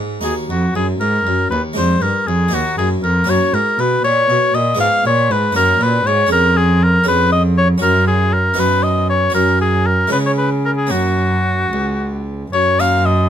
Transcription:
0.00 0.20 G#2 soft
0.00 0.21 G#2 soft
0.00 0.19 F#4 soft
0.21 0.30 D#2 medium
0.21 0.46 D#2 soft
0.21 1.71 D#4 soft
0.21 1.72 F#4 soft
0.21 0.34 G#4 medium
0.47 0.73 F2 medium
0.47 0.73 F2 soft
0.47 0.75 F#4 medium
0.74 0.99 F#2 medium
0.74 0.98 F#2 soft
0.74 0.87 G#4 medium
0.99 1.24 G#2 medium
0.99 1.23 G#2 soft
0.99 1.50 A#4 medium
1.25 1.50 F#2 medium
1.25 1.49 F#2 medium
1.50 1.58 D#2 medium
1.50 1.74 D#2 soft
1.50 1.62 B4 medium
1.73 2.00 F2 medium
1.73 1.99 G#3 soft
1.73 2.50 D4 soft
1.73 2.50 F4 soft
1.73 2.03 C5 medium
1.78 2.00 F2 soft
2.00 2.08 G2 medium
2.00 2.25 G2 soft
2.00 2.29 A#4 medium
2.26 2.51 F2 medium
2.26 2.51 F2 soft
2.26 2.56 G#4 medium
2.48 2.60 D#2 medium
2.48 2.99 A#3 medium
2.48 3.25 D#4 soft
2.48 3.25 F#4 soft
2.53 2.75 D#2 medium
2.53 2.77 F#4 medium
2.77 3.02 F#2 medium
2.77 3.01 F#2 medium
2.77 2.89 G#4 medium
3.03 3.27 F2 medium
3.03 3.26 F2 medium
3.03 3.31 A#4 medium
3.24 3.35 F#2 medium
3.24 3.51 F#2 medium
3.24 3.50 A#3 soft
3.24 3.51 C#4 soft
3.24 4.75 F#4 soft
3.29 3.55 C#5 medium
3.53 3.61 G#2 medium
3.53 3.76 G#2 soft
3.53 3.81 A#4 medium
3.78 4.03 B2 medium
3.78 4.02 B2 medium
3.78 4.04 B4 medium
4.03 4.27 A#2 medium
4.03 4.56 C#5 loud
4.28 4.36 B2 medium
4.28 4.52 B2 medium
4.53 4.77 A#2 medium
4.53 4.80 D#5 medium
4.75 4.86 G#2 medium
4.75 5.02 G#3 medium
4.75 5.02 B3 medium
4.75 5.52 F4 medium
4.80 5.03 G#2 medium
4.80 5.05 F5 loud
5.04 5.31 A#2 medium
5.04 5.28 A#2 medium
5.04 5.33 C#5 loud
5.29 5.54 G#2 medium
5.29 5.53 G#2 medium
5.29 5.56 B4 medium
5.52 5.79 F#2 medium
5.52 6.03 A#3 medium
5.52 6.04 C#4 medium
5.52 6.29 F#4 medium
5.56 5.79 F#2 medium
5.56 5.84 A#4 loud
5.80 6.05 A#2 medium
5.80 6.04 A#2 medium
5.80 6.08 B4 medium
6.05 6.30 G#2 medium
6.05 6.29 G#2 medium
6.05 6.31 C#5 loud
6.27 7.02 C#4 medium
6.27 7.03 G#4 medium
6.31 7.03 F2 medium
6.31 6.59 A#4 loud
6.57 6.85 G#4 medium
6.84 7.07 A#4 loud
7.04 7.80 F2 medium
7.04 7.77 C#4 medium
7.04 7.78 G#4 medium
7.08 7.78 F2 medium
7.08 7.32 B4 loud
7.32 7.43 D#5 loud
7.58 7.69 C#5 medium
7.78 8.56 F#2 medium
7.78 8.53 C#4 medium
7.78 8.54 F#4 medium
7.82 8.54 F#2 medium
7.82 8.07 A#4 loud
8.07 8.35 G#4 medium
8.34 8.61 A#4 medium
8.54 9.30 B3 medium
8.54 9.30 D#4 medium
8.54 9.31 F#4 medium
8.58 9.33 F#2 medium
8.58 9.31 F#2 medium
8.58 8.85 B4 loud
8.83 9.09 D#5 medium
9.10 9.34 C#5 medium
9.30 10.08 C#4 medium
9.30 10.09 F#4 medium
9.34 10.11 F#2 medium
9.34 10.09 F#2 medium
9.34 9.60 A#4 loud
9.61 9.88 G#4 medium
9.86 10.12 A#4 medium
10.07 10.87 G#3 medium
10.07 10.87 C#4 soft
10.07 10.88 F4 medium
10.12 10.88 C#3 medium
10.12 10.93 C#3 medium
10.12 10.18 B4 medium
10.26 10.32 C#5 medium
10.38 10.50 B4 medium
10.65 10.71 A#4 medium
10.77 10.93 G#4 medium
10.87 12.47 A#3 soft
10.87 12.47 C#4 soft
10.87 12.48 F#4 soft
10.91 11.69 F#2 soft
10.91 11.72 F#2 medium
10.91 12.27 F#4 medium
11.73 12.52 C#2 medium
11.73 12.49 C#2 soft
12.53 13.29 F#2 medium
12.53 12.82 C#5 loud
12.80 13.29 A#3 soft
12.80 13.29 C#4 soft
12.80 13.29 F#4 soft
12.80 13.07 F5 medium
13.05 13.29 D#5 medium

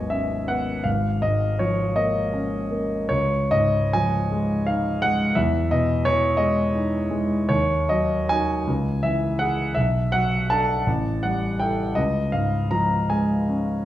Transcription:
0.00 0.81 G#1 soft
0.00 0.88 D#2 soft
0.00 0.89 F#3 soft
0.00 0.34 B3 soft
0.00 0.89 C#5 medium
0.00 0.89 D#5 medium
0.00 0.10 G#5 medium
0.10 0.71 C#4 soft
0.10 0.48 E5 medium
0.48 0.85 B3 soft
0.48 0.85 F#5 medium
0.84 3.05 G#1 soft
0.84 1.22 F5 medium
1.22 1.82 G#2 soft
1.22 1.60 D#5 medium
1.59 2.19 F3 soft
1.59 1.97 C#5 medium
1.96 2.55 A#3 soft
1.96 3.09 D#5 medium
2.33 2.93 C#4 soft
2.71 3.10 A#3 soft
3.09 5.33 C#2 soft
3.09 3.51 C#5 medium
3.51 4.15 G#2 soft
3.51 3.92 D#5 medium
3.93 4.53 F3 soft
3.93 4.67 G#5 medium
4.32 4.88 G#3 soft
4.67 5.23 D#4 soft
4.67 5.02 F5 medium
5.02 5.37 G#3 soft
5.02 5.37 F#5 medium
5.35 7.44 E2 soft
5.35 5.70 E5 medium
5.71 6.26 B2 soft
5.71 6.05 D#5 medium
6.05 6.60 E3 soft
6.05 6.39 C#5 medium
6.37 6.95 G#3 soft
6.37 7.47 D#5 medium
6.75 7.33 D#4 soft
7.11 7.49 G#3 soft
7.49 8.65 D#2 soft
7.49 7.90 C#5 medium
7.89 8.53 F#3 soft
7.89 8.30 D#5 medium
8.29 8.64 D#4 soft
8.29 8.65 F#4 soft
8.29 9.04 G#5 medium
8.67 9.72 C#2 soft
9.03 9.61 E3 soft
9.03 9.39 E5 medium
9.39 9.72 E4 soft
9.39 9.73 G#4 soft
9.39 9.75 F#5 medium
9.75 10.83 B1 soft
9.75 10.12 E5 medium
10.12 10.72 F#3 soft
10.12 10.49 F#5 medium
10.50 10.84 D4 soft
10.50 10.84 A4 soft
10.50 11.24 A5 medium
10.86 11.94 A1 soft
11.23 11.83 G3 soft
11.23 11.60 F#5 medium
11.59 11.94 E4 soft
11.59 11.94 A4 soft
11.59 11.97 G5 medium
11.95 13.85 C#2 soft
11.95 12.33 D#5 medium
12.32 12.95 G#2 soft
12.32 12.71 F5 medium
12.71 13.34 F3 soft
12.71 13.10 A#5 medium
13.10 13.73 G#3 soft
13.10 13.85 G#5 medium
13.49 13.85 C#4 soft

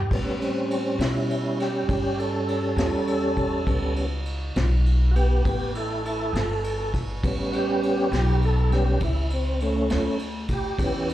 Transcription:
0.00 0.13 G4 loud
0.11 0.97 A2 medium
0.11 3.63 G3 soft
0.11 0.38 B3 soft
0.11 3.65 C#4 soft
0.11 kick loud
0.11 crash loud
0.39 0.43 B3 medium
0.39 1.00 C4 medium
0.39 ride medium
0.71 ride medium
0.99 1.86 B2 medium
0.99 1.59 E4 medium
0.99 snare medium
0.99 ride medium
1.30 ride medium
1.60 2.18 G4 medium
1.60 snare soft
1.60 ride medium
1.89 2.75 G2 medium
1.89 kick loud
1.89 ride medium
2.19 2.77 A4 medium
2.19 ride medium
2.48 ride medium
2.76 3.64 E2 medium
2.76 2.80 G#4 medium
2.76 3.94 A4 loud
2.76 snare loud
2.76 ride medium
3.07 ride medium
3.36 kick medium
3.36 ride medium
3.64 4.53 C#2 medium
3.64 4.05 G3 soft
3.64 4.06 B3 soft
3.64 4.06 C#4 medium
3.64 kick loud
3.64 ride medium
3.96 ride medium
4.25 ride medium
4.56 5.43 B1 loud
4.56 snare medium
4.56 ride medium
4.86 ride soft
5.11 5.15 F#4 medium
5.16 5.43 B3 medium
5.16 5.44 G4 medium
5.16 ride medium
5.45 6.32 A1 medium
5.45 5.73 B3 medium
5.45 5.74 G4 medium
5.45 kick loud
5.45 ride medium
5.75 6.03 E4 medium
5.75 6.05 A4 medium
5.75 ride medium
6.05 6.33 E4 medium
6.05 6.34 A4 medium
6.05 ride medium
6.33 7.20 G1 medium
6.33 6.36 G#4 medium
6.33 6.92 A4 medium
6.33 snare loud
6.33 ride medium
6.64 ride medium
6.94 kick medium
6.94 snare soft
6.94 ride medium
7.24 8.10 A1 medium
7.24 8.09 G3 soft
7.24 8.09 B3 soft
7.24 8.10 C#4 medium
7.24 kick loud
7.24 ride medium
7.52 7.55 F#4 medium
7.52 ride medium
7.56 8.41 G4 loud
7.83 ride medium
8.12 8.98 B1 medium
8.12 snare loud
8.12 ride medium
8.42 8.73 A4 medium
8.42 ride soft
8.70 8.98 G3 soft
8.70 8.99 B3 soft
8.70 8.99 C#4 medium
8.70 9.01 G4 medium
8.70 snare soft
8.70 ride medium
9.00 9.88 C#2 medium
9.00 9.31 E4 medium
9.00 kick loud
9.00 ride medium
9.30 9.61 C4 medium
9.30 ride medium
9.60 10.17 A3 medium
9.60 10.19 C#4 loud
9.60 ride medium
9.90 10.77 D2 medium
9.90 snare loud
9.90 ride medium
10.19 ride medium
10.48 kick medium
10.48 snare soft
10.48 ride medium
10.52 11.09 G4 medium
10.78 11.14 E2 medium
10.78 11.14 E3 medium
10.78 11.14 B3 soft
10.78 11.14 C#4 medium
10.78 kick loud
10.78 ride medium
11.09 ride medium

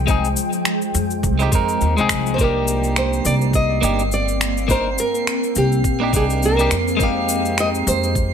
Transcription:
0.00 0.32 C2 loud
0.00 2.34 F3 medium
0.00 2.35 G#3 medium
0.00 2.34 G5 medium
0.07 0.26 G#3 medium
0.07 0.26 C4 medium
0.07 0.27 D#4 medium
0.07 0.28 G#4 medium
0.07 kick loud
0.07 shaker soft
0.25 shaker soft
0.37 shaker medium
0.53 shaker soft
0.65 finger snap medium
0.65 shaker soft
0.82 shaker soft
0.94 1.25 F2 loud
0.94 shaker medium
1.11 shaker soft
1.23 1.46 C2 loud
1.23 kick loud
1.23 shaker soft
1.39 1.49 G#3 medium
1.39 1.50 C4 medium
1.39 1.50 D#4 medium
1.39 1.51 G4 medium
1.39 shaker soft
1.52 1.81 F2 medium
1.52 1.93 G#3 medium
1.52 1.94 C4 medium
1.52 1.94 D#4 medium
1.52 1.95 A#4 medium
1.52 kick loud
1.52 shaker medium
1.69 shaker soft
1.81 1.94 D#2 medium
1.81 shaker soft
1.97 2.07 C2 medium
1.97 2.35 G#3 medium
1.97 2.36 C4 medium
1.97 2.37 D#4 medium
1.97 2.37 G#4 loud
1.97 shaker soft
2.09 3.21 C2 medium
2.09 finger snap medium
2.09 kick medium
2.09 shaker medium
2.26 shaker soft
2.34 3.79 A#3 medium
2.34 6.96 C4 medium
2.34 2.39 C5 medium
2.38 6.96 A#3 medium
2.38 3.80 D4 medium
2.38 3.81 D#4 medium
2.38 2.99 A#4 medium
2.38 8.34 C7 medium
2.38 kick loud
2.38 shaker soft
2.44 3.83 G4 loud
2.68 shaker medium
2.84 shaker soft
2.96 3.26 C5 loud
2.96 finger snap medium
2.96 shaker soft
3.13 shaker soft
3.25 3.78 C2 medium
3.25 3.34 D5 loud
3.25 shaker medium
3.41 shaker soft
3.53 4.13 D#5 loud
3.53 kick loud
3.53 shaker soft
3.81 4.93 G1 medium
3.81 4.01 A#3 medium
3.81 4.01 D4 medium
3.81 4.01 D#4 medium
3.81 4.02 G4 loud
3.81 shaker medium
3.99 shaker soft
4.12 4.66 D5 loud
4.12 shaker soft
4.28 shaker soft
4.41 finger snap medium
4.41 shaker medium
4.57 shaker soft
4.68 4.87 A#3 medium
4.68 4.88 D4 medium
4.68 4.88 D#4 medium
4.68 4.89 A#4 medium
4.68 4.97 C5 loud
4.68 kick loud
4.68 shaker soft
4.98 5.57 A#4 loud
4.98 shaker medium
5.15 shaker soft
5.27 finger snap medium
5.27 shaker soft
5.43 shaker soft
5.55 5.84 C2 medium
5.55 6.16 G4 loud
5.55 shaker medium
5.72 shaker soft
5.84 6.13 A#1 loud
5.84 kick loud
5.84 shaker soft
6.00 6.10 A#3 medium
6.00 6.11 D4 medium
6.00 6.11 D#4 medium
6.00 6.12 G4 medium
6.12 6.67 C2 medium
6.12 6.54 A#3 medium
6.12 6.55 D4 medium
6.12 6.55 D#4 medium
6.12 6.56 G4 medium
6.12 6.24 G#4 loud
6.12 kick loud
6.12 shaker medium
6.30 shaker soft
6.43 7.03 A#4 loud
6.43 shaker soft
6.57 6.73 A#3 medium
6.57 6.74 D4 medium
6.57 6.75 D#4 medium
6.57 6.75 G4 loud
6.57 shaker soft
6.71 7.82 F2 medium
6.71 finger snap medium
6.71 shaker medium
6.88 shaker soft
6.97 8.34 D#3 medium
6.97 8.34 F3 medium
6.97 8.34 G#3 medium
6.97 8.34 C4 medium
6.97 8.34 G5 medium
6.97 kick loud
6.97 shaker medium
7.01 8.34 D#4 medium
7.01 8.34 G4 loud
7.01 7.60 F5 loud
7.29 shaker medium
7.45 shaker soft
7.58 7.68 D#5 loud
7.58 finger snap medium
7.58 shaker medium
7.75 shaker soft
7.87 8.34 F2 loud
7.87 8.34 C5 loud
7.87 shaker medium
8.03 shaker soft
8.15 kick loud
8.15 shaker soft

